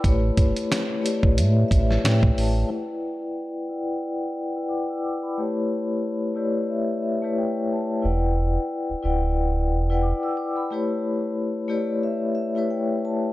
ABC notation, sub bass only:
X:1
M:4/4
L:1/16
Q:"Swing 16ths" 1/4=90
K:Edor
V:1 name="Sub bass" clef=bass
A,,,2 G,,, z4 A,,, A,,2 A,,,2 A,,2 A,,,2 | z16 | z16 | E,,,4 z D,,, D,,,4 E,,,3 z3 |
z16 |]